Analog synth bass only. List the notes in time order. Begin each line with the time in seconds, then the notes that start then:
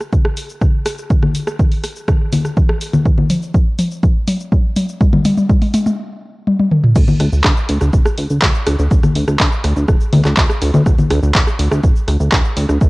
6.96 D2
7.20 D2
7.33 D2
7.45 D2
7.69 D2
7.81 D2
7.93 D1
8.18 D2
8.30 D2
8.42 D2
8.67 D2
8.79 D2
8.91 D2
9.15 D2
9.28 D2
9.40 D2
9.64 D2
9.77 D2
9.89 D1
10.13 D2
10.25 D2
10.37 D2
10.62 D2
10.74 D2
10.86 D2
11.10 D2
11.23 D2
11.35 D2
11.59 D2
11.72 D2
11.84 D1
12.08 D2
12.20 D2
12.32 D2
12.57 D2
12.69 D2
12.81 D2